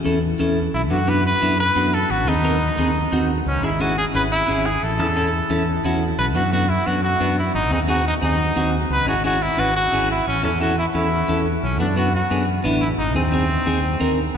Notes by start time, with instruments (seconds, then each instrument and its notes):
0.04 fingered electric bass E2, clean electric guitar C#4 E4 A4
0.39 fingered electric bass E2, clean electric guitar C#4 E4 A4
0.74 fingered electric bass B1, trumpet E4
0.90 fingered electric bass F#2, clean electric guitar B3 D4 F#4, trumpet F#4
1.07 clean electric guitar B3 D4 F#4, trumpet B4
1.27 trumpet B4
1.41 fingered electric bass F#2, clean electric guitar B3 D4 E4
1.60 trumpet B4
1.75 fingered electric bass F#2, clean electric guitar B3 D4 F#4
1.94 trumpet A4
2.10 fingered electric bass G#1, trumpet F#4
2.27 fingered electric bass D#2, clean electric guitar C4 D#4 G#4, trumpet D#4
2.44 clean electric guitar C4 D#4 A#4
2.78 fingered electric bass D#2, clean electric guitar C4 D#4 G#4
3.12 fingered electric bass D#2, clean electric guitar C4 D#4 F#4
3.46 fingered electric bass C#2, trumpet C#4
3.63 fingered electric bass G#1, clean electric guitar C#4 E4 G#4, trumpet E4
3.80 clean electric guitar C#4 E4 G#4, trumpet F#4
3.98 trumpet G#4
4.14 fingered electric bass G#1, clean electric guitar C#4 E4 G#4, trumpet B4
4.32 trumpet E4
4.48 fingered electric bass G#1, clean electric guitar C#4 E4 G#4
4.66 trumpet G#4
4.83 fingered electric bass A1, trumpet A4
4.99 fingered electric bass E2, clean electric guitar C#4 E4 A4
5.16 clean electric guitar C#4 E4 A4
5.50 fingered electric bass E2, clean electric guitar C#4 E4 A4
5.84 fingered electric bass E2, clean electric guitar C#4 E4 F#4
6.19 fingered electric bass B1, trumpet B4
6.35 fingered electric bass F#2, clean electric guitar B3 D4 F#4, trumpet F#4
6.53 clean electric guitar B3 D4 F#4, trumpet F#4
6.70 trumpet E4
6.86 fingered electric bass F#2, clean electric guitar B3 D4 F#4, trumpet F#4
7.04 trumpet F#4
7.20 fingered electric bass F#2, clean electric guitar B3 D4 F#4
7.38 trumpet E4
7.55 fingered electric bass G#1, trumpet D#4
7.71 fingered electric bass D#2, clean electric guitar C4 D#4 G#4, trumpet D#4
7.87 clean electric guitar C4 D#4 G#4, trumpet F#4
8.08 trumpet D#4
8.21 fingered electric bass D#2, clean electric guitar C4 D#4 G#4, trumpet D#4
8.56 fingered electric bass D#2, clean electric guitar C4 D#4 F#4
8.90 fingered electric bass C#2, trumpet B4
9.07 fingered electric bass G#1, clean electric guitar C#4 E4 G#4, trumpet F#4
9.24 clean electric guitar C#4 E4 G#4, trumpet F#4
9.42 trumpet E4
9.57 fingered electric bass G#1, clean electric guitar C#4 E4 B4, trumpet F#4
9.76 trumpet F#4
9.92 fingered electric bass G#1, clean electric guitar C#4 E4 G#4
10.11 trumpet E4
10.27 fingered electric bass A1, trumpet C#4
10.43 fingered electric bass E2, clean electric guitar C#4 E4 A4, trumpet C#4
10.60 clean electric guitar C#4 E4 A4, trumpet F#4
10.79 trumpet E4
10.94 fingered electric bass E2, clean electric guitar C#4 E4 A4, trumpet E4
11.28 fingered electric bass E2, clean electric guitar C#4 E4 A4
11.63 fingered electric bass B1, trumpet C#4
11.79 fingered electric bass F#2, clean electric guitar B3 D4 F#4, trumpet D4
11.96 clean electric guitar B3 D4 F#4, trumpet F#4
12.15 trumpet F#4
12.30 fingered electric bass F#2, clean electric guitar B3 D4 G#4
12.64 fingered electric bass A1, clean electric guitar B3 D4 E4
12.81 trumpet E4
12.98 fingered electric bass G#1, trumpet D#4
13.15 fingered electric bass D#2, clean electric guitar C4 D#4 G#4, trumpet C4
13.32 clean electric guitar C4 D#4 G#4
13.66 fingered electric bass D#2, clean electric guitar C4 D#4 G#4
14.00 fingered electric bass D#2, clean electric guitar C4 D#4 A#4